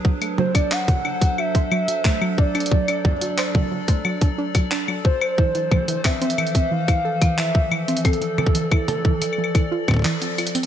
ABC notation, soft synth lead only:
X:1
M:4/4
L:1/16
Q:1/4=90
K:Dm
V:1 name="Soft synth lead"
z2 c d ^f4 e6 d2- | d6 z8 c2- | c4 e4 f4 e4 | A12 z4 |]